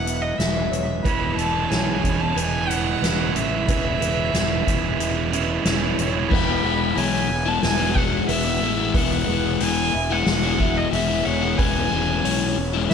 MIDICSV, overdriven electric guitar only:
0, 0, Header, 1, 3, 480
1, 0, Start_track
1, 0, Key_signature, 4, "major"
1, 0, Tempo, 658617
1, 762, Time_signature, 4, 2, 24, 8
1, 9429, End_track
2, 0, Start_track
2, 0, Title_t, "Overdriven electric guitar"
2, 0, Program_c, 0, 29
2, 4592, Note_on_c, 0, 52, 86
2, 4604, Note_on_c, 0, 56, 88
2, 4611, Note_on_c, 0, 59, 86
2, 4618, Note_on_c, 0, 64, 98
2, 4711, Note_off_c, 0, 64, 0
2, 4714, Note_on_c, 0, 64, 61
2, 4726, Note_off_c, 0, 59, 0
2, 4729, Note_on_c, 0, 59, 60
2, 4736, Note_off_c, 0, 56, 0
2, 4739, Note_on_c, 0, 56, 52
2, 4833, Note_off_c, 0, 52, 0
2, 4836, Note_on_c, 0, 52, 64
2, 4840, Note_off_c, 0, 56, 0
2, 4843, Note_on_c, 0, 56, 70
2, 4848, Note_off_c, 0, 59, 0
2, 4851, Note_on_c, 0, 59, 73
2, 4853, Note_off_c, 0, 64, 0
2, 4856, Note_on_c, 0, 64, 68
2, 5063, Note_off_c, 0, 52, 0
2, 5066, Note_on_c, 0, 52, 88
2, 5071, Note_off_c, 0, 56, 0
2, 5074, Note_on_c, 0, 56, 77
2, 5081, Note_off_c, 0, 59, 0
2, 5084, Note_on_c, 0, 59, 97
2, 5086, Note_off_c, 0, 64, 0
2, 5089, Note_on_c, 0, 64, 94
2, 5311, Note_off_c, 0, 52, 0
2, 5313, Note_off_c, 0, 56, 0
2, 5316, Note_off_c, 0, 59, 0
2, 5316, Note_off_c, 0, 64, 0
2, 5433, Note_on_c, 0, 64, 66
2, 5449, Note_on_c, 0, 59, 70
2, 5460, Note_on_c, 0, 56, 51
2, 5662, Note_off_c, 0, 64, 0
2, 5665, Note_on_c, 0, 64, 65
2, 5678, Note_off_c, 0, 59, 0
2, 5681, Note_on_c, 0, 59, 58
2, 5689, Note_off_c, 0, 56, 0
2, 5692, Note_on_c, 0, 56, 56
2, 5793, Note_on_c, 0, 52, 60
2, 5804, Note_off_c, 0, 56, 0
2, 5807, Note_on_c, 0, 56, 75
2, 5810, Note_off_c, 0, 59, 0
2, 5812, Note_on_c, 0, 59, 78
2, 5817, Note_off_c, 0, 64, 0
2, 5820, Note_on_c, 0, 64, 70
2, 6031, Note_off_c, 0, 52, 0
2, 6034, Note_on_c, 0, 52, 89
2, 6043, Note_off_c, 0, 56, 0
2, 6046, Note_on_c, 0, 56, 92
2, 6050, Note_off_c, 0, 59, 0
2, 6053, Note_on_c, 0, 59, 96
2, 6057, Note_off_c, 0, 64, 0
2, 6060, Note_on_c, 0, 64, 97
2, 6154, Note_off_c, 0, 64, 0
2, 6157, Note_on_c, 0, 64, 73
2, 6167, Note_off_c, 0, 59, 0
2, 6170, Note_on_c, 0, 59, 70
2, 6178, Note_off_c, 0, 56, 0
2, 6181, Note_on_c, 0, 56, 66
2, 6275, Note_off_c, 0, 52, 0
2, 6278, Note_on_c, 0, 52, 65
2, 6284, Note_off_c, 0, 56, 0
2, 6287, Note_on_c, 0, 56, 81
2, 6293, Note_off_c, 0, 59, 0
2, 6296, Note_on_c, 0, 59, 75
2, 6299, Note_off_c, 0, 64, 0
2, 6302, Note_on_c, 0, 64, 86
2, 6385, Note_off_c, 0, 64, 0
2, 6388, Note_on_c, 0, 64, 77
2, 6399, Note_off_c, 0, 59, 0
2, 6402, Note_on_c, 0, 59, 66
2, 6409, Note_off_c, 0, 56, 0
2, 6412, Note_on_c, 0, 56, 68
2, 6513, Note_off_c, 0, 52, 0
2, 6516, Note_on_c, 0, 52, 80
2, 6521, Note_off_c, 0, 56, 0
2, 6524, Note_on_c, 0, 56, 86
2, 6529, Note_off_c, 0, 59, 0
2, 6532, Note_on_c, 0, 59, 103
2, 6536, Note_off_c, 0, 64, 0
2, 6539, Note_on_c, 0, 64, 90
2, 6635, Note_off_c, 0, 64, 0
2, 6638, Note_on_c, 0, 64, 57
2, 6648, Note_off_c, 0, 59, 0
2, 6651, Note_on_c, 0, 59, 62
2, 6659, Note_off_c, 0, 56, 0
2, 6662, Note_on_c, 0, 56, 55
2, 6754, Note_off_c, 0, 52, 0
2, 6757, Note_on_c, 0, 52, 72
2, 6763, Note_off_c, 0, 56, 0
2, 6766, Note_on_c, 0, 56, 76
2, 6774, Note_off_c, 0, 59, 0
2, 6777, Note_on_c, 0, 59, 84
2, 6779, Note_off_c, 0, 64, 0
2, 6782, Note_on_c, 0, 64, 88
2, 6988, Note_off_c, 0, 52, 0
2, 6991, Note_on_c, 0, 52, 82
2, 7000, Note_off_c, 0, 56, 0
2, 7003, Note_on_c, 0, 56, 98
2, 7008, Note_off_c, 0, 59, 0
2, 7011, Note_on_c, 0, 59, 95
2, 7013, Note_off_c, 0, 64, 0
2, 7016, Note_on_c, 0, 64, 92
2, 7240, Note_off_c, 0, 52, 0
2, 7246, Note_off_c, 0, 56, 0
2, 7248, Note_off_c, 0, 59, 0
2, 7248, Note_off_c, 0, 64, 0
2, 7363, Note_on_c, 0, 64, 71
2, 7375, Note_on_c, 0, 59, 66
2, 7386, Note_on_c, 0, 56, 65
2, 7599, Note_off_c, 0, 64, 0
2, 7602, Note_on_c, 0, 64, 77
2, 7612, Note_off_c, 0, 59, 0
2, 7615, Note_on_c, 0, 59, 62
2, 7622, Note_off_c, 0, 56, 0
2, 7625, Note_on_c, 0, 56, 54
2, 7727, Note_on_c, 0, 52, 72
2, 7734, Note_off_c, 0, 56, 0
2, 7737, Note_on_c, 0, 56, 82
2, 7739, Note_off_c, 0, 59, 0
2, 7742, Note_on_c, 0, 59, 77
2, 7746, Note_off_c, 0, 64, 0
2, 7749, Note_on_c, 0, 64, 76
2, 7951, Note_off_c, 0, 52, 0
2, 7953, Note_on_c, 0, 52, 98
2, 7962, Note_off_c, 0, 56, 0
2, 7965, Note_on_c, 0, 56, 89
2, 7969, Note_off_c, 0, 59, 0
2, 7972, Note_on_c, 0, 59, 105
2, 7978, Note_off_c, 0, 64, 0
2, 7981, Note_on_c, 0, 64, 91
2, 8077, Note_off_c, 0, 64, 0
2, 8080, Note_on_c, 0, 64, 74
2, 8091, Note_off_c, 0, 59, 0
2, 8094, Note_on_c, 0, 59, 72
2, 8099, Note_off_c, 0, 56, 0
2, 8102, Note_on_c, 0, 56, 62
2, 8193, Note_off_c, 0, 52, 0
2, 8196, Note_on_c, 0, 52, 77
2, 8200, Note_off_c, 0, 56, 0
2, 8203, Note_on_c, 0, 56, 77
2, 8207, Note_off_c, 0, 59, 0
2, 8209, Note_on_c, 0, 59, 84
2, 8214, Note_off_c, 0, 64, 0
2, 8217, Note_on_c, 0, 64, 74
2, 8313, Note_off_c, 0, 64, 0
2, 8316, Note_on_c, 0, 64, 83
2, 8328, Note_off_c, 0, 59, 0
2, 8331, Note_on_c, 0, 59, 79
2, 8337, Note_off_c, 0, 56, 0
2, 8340, Note_on_c, 0, 56, 72
2, 8431, Note_off_c, 0, 52, 0
2, 8433, Note_on_c, 0, 52, 100
2, 8440, Note_off_c, 0, 56, 0
2, 8443, Note_on_c, 0, 56, 96
2, 8446, Note_off_c, 0, 59, 0
2, 8449, Note_on_c, 0, 61, 96
2, 8452, Note_off_c, 0, 64, 0
2, 8455, Note_on_c, 0, 64, 100
2, 8557, Note_off_c, 0, 64, 0
2, 8560, Note_on_c, 0, 64, 63
2, 8570, Note_off_c, 0, 61, 0
2, 8573, Note_on_c, 0, 61, 62
2, 8581, Note_off_c, 0, 56, 0
2, 8584, Note_on_c, 0, 56, 57
2, 8676, Note_off_c, 0, 52, 0
2, 8679, Note_on_c, 0, 52, 70
2, 8686, Note_off_c, 0, 56, 0
2, 8689, Note_on_c, 0, 56, 72
2, 8694, Note_off_c, 0, 61, 0
2, 8697, Note_on_c, 0, 61, 84
2, 8702, Note_off_c, 0, 64, 0
2, 8705, Note_on_c, 0, 64, 86
2, 8907, Note_off_c, 0, 52, 0
2, 8910, Note_on_c, 0, 52, 97
2, 8920, Note_off_c, 0, 56, 0
2, 8923, Note_on_c, 0, 56, 99
2, 8927, Note_off_c, 0, 61, 0
2, 8929, Note_on_c, 0, 61, 102
2, 8932, Note_off_c, 0, 64, 0
2, 8935, Note_on_c, 0, 64, 113
2, 9162, Note_off_c, 0, 52, 0
2, 9165, Note_off_c, 0, 56, 0
2, 9168, Note_off_c, 0, 61, 0
2, 9168, Note_off_c, 0, 64, 0
2, 9280, Note_on_c, 0, 64, 79
2, 9293, Note_on_c, 0, 61, 70
2, 9304, Note_on_c, 0, 56, 66
2, 9429, Note_off_c, 0, 56, 0
2, 9429, Note_off_c, 0, 61, 0
2, 9429, Note_off_c, 0, 64, 0
2, 9429, End_track
3, 0, Start_track
3, 0, Title_t, "Muted overdriven electric guitar strokes"
3, 5314, Note_on_c, 9, 29, 45
3, 5386, Note_off_c, 9, 29, 0
3, 7243, Note_on_c, 9, 29, 44
3, 7316, Note_off_c, 9, 29, 0
3, 9165, Note_on_c, 9, 29, 48
3, 9238, Note_off_c, 9, 29, 0
3, 9429, End_track
0, 0, End_of_file